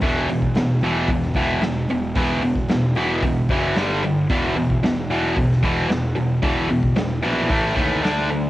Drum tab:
HH |o-o-o-o-o-o-o-o-|o-o-o-o-o-o-o-o-|o-o-o-o-o-o-o-o-|o-o-o-o-o-o-o-o-|
SD |----o----o--o---|----o-------o---|----o----o--o---|----o--o----o---|
BD |o--o----o-o-----|o--o----o-o-----|o--o----o-o-----|o--o----o-o-----|